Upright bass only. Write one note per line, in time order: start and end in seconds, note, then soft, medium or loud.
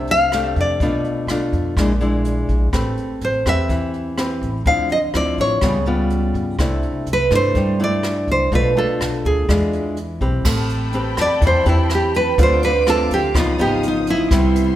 0.00 0.52 C2 medium
0.56 0.78 F2 medium
0.80 1.03 B1 medium
1.27 1.50 B1 medium
1.53 1.75 F2 medium
1.77 2.45 A#1 medium
2.49 2.71 A#1 medium
2.73 2.96 A1 medium
3.21 3.44 A1 medium
3.46 4.38 E2 medium
4.42 4.64 A1 medium
4.66 4.88 D2 medium
5.14 5.37 D2 medium
5.38 5.61 A1 medium
5.62 6.31 C#2 medium
6.34 6.57 G2 medium
6.59 6.81 C2 medium
7.06 7.29 C2 medium
7.31 8.24 G2 medium
8.28 8.50 C2 medium
8.52 8.75 B1 medium
9.00 9.23 B1 medium
9.25 9.47 D2 medium
9.49 10.17 E2 medium
10.21 10.43 B1 medium
10.45 11.14 A1 medium
11.17 11.40 E2 medium
11.41 11.64 E2 medium
11.65 12.34 E2 medium
12.38 13.07 D2 medium
13.10 13.34 D2 medium
13.34 13.57 C#2 medium
13.58 14.27 G#1 medium
14.31 14.76 C2 medium